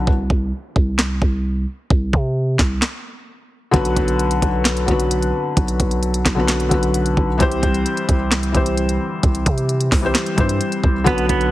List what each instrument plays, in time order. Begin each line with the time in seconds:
0.07 808-style bass C2, kick
0.30 808-style bass C2, kick
0.76 808-style bass C2, kick
0.99 snare, clap
1.22 808-style bass C2, kick
1.90 808-style bass C2, kick
2.13 808-style bass C3, kick
2.59 808-style bass C2, kick, snare, clap
2.82 snare, clap
3.71 808-style bass B1, felt piano D3 F#3 B3 F#4, kick, closed hi-hat
3.76 felt piano B4
3.85 closed hi-hat
3.96 808-style bass B1, kick, closed hi-hat
4.08 closed hi-hat
4.19 closed hi-hat
4.31 closed hi-hat
4.42 808-style bass B1, kick, closed hi-hat
4.65 snare, clap, closed hi-hat
4.77 closed hi-hat
4.86 808-style bass B1, felt piano D3 F#3 B3 F#4, kick, closed hi-hat
4.91 felt piano B4
5.00 closed hi-hat
5.11 closed hi-hat
5.22 closed hi-hat
5.57 808-style bass B1, kick, closed hi-hat
5.68 closed hi-hat
5.80 808-style bass B1, kick, closed hi-hat
5.91 closed hi-hat
6.03 closed hi-hat
6.14 closed hi-hat
6.26 808-style bass B1, kick, snare, clap, closed hi-hat
6.35 felt piano D3 F#3 B3 F#4
6.39 felt piano B4
6.48 snare, clap, closed hi-hat
6.60 closed hi-hat
6.69 808-style bass B1, felt piano D3 F#3 B3 F#4, kick, closed hi-hat
6.74 felt piano B4
6.83 closed hi-hat
6.94 closed hi-hat
7.06 closed hi-hat
7.17 808-style bass B1, kick
7.38 808-style bass C2, felt piano E3 G3 C4 G4, kick, closed hi-hat
7.42 felt piano C5
7.51 closed hi-hat
7.63 808-style bass C2, kick, closed hi-hat
7.74 closed hi-hat
7.86 closed hi-hat
7.97 closed hi-hat
8.09 808-style bass C2, kick, closed hi-hat
8.32 snare, clap, closed hi-hat
8.43 closed hi-hat
8.52 808-style bass C2, felt piano E3 G3 C4 G4, kick, closed hi-hat
8.57 felt piano C5
8.66 closed hi-hat
8.77 closed hi-hat
8.89 closed hi-hat
9.23 808-style bass C2, kick, closed hi-hat
9.35 closed hi-hat
9.46 808-style bass C3, kick, closed hi-hat
9.58 closed hi-hat
9.69 closed hi-hat
9.81 closed hi-hat
9.92 808-style bass C2, kick, snare, clap, open hi-hat
10.01 felt piano E3 G3 C4 G4
10.06 felt piano C5
10.15 snare, clap, closed hi-hat
10.26 closed hi-hat
10.36 808-style bass G2, felt piano E3 G3 C4 G4, kick, closed hi-hat
10.40 felt piano C5
10.49 closed hi-hat
10.61 closed hi-hat
10.72 closed hi-hat
10.84 808-style bass C2, kick
11.04 808-style bass B1, felt piano D3 F#3 B3 F#4, clean electric guitar B3, kick, closed hi-hat
11.09 felt piano B4
11.18 closed hi-hat
11.29 808-style bass B1, clean electric guitar B3, kick, closed hi-hat
11.41 closed hi-hat